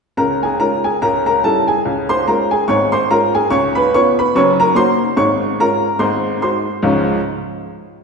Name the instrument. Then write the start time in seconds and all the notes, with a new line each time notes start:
upright piano
0.17 C#2 C#3 A#4 A#5
0.43 G#4 G#5
0.60 G#3 C#4 F4 A#4 A#5
0.84 G#4 G#5
1.02 C#2 C#3 A#4 A#5
1.26 A#4 A#5
1.44 G3 C#4 E4 A4 A5
1.68 G#4 G#5
1.85 C#2 C#3
2.09 C5 C6
2.27 G#3 C#4 F4 A#4 A#5
2.51 G#4 G#5
2.68 G#1 G#2 C#5 C#6
2.92 C5 C6
3.10 G#3 C#4 F4 A#4 A#5
3.35 G#4 G#5
3.50 C#2 C#3 C#5 C#6
3.75 B4 B5
3.94 B3 C#4 F4 C#5 C#6
4.19 B4 B5
4.35 F#1 F#2 C#5 C#6
4.60 A#4 A#5
4.75 A#3 C#4 F#4 C5 C6
5.17 G#1 G#2 C#5 C#6
5.60 G#3 C#4 F4 A#4 A#5
5.99 G#1 G#2 C5 C6
6.41 G#3 D#4 F#4 C5 C6
6.82 C#2 G#2 F3 G#3 C#4 F4 C#6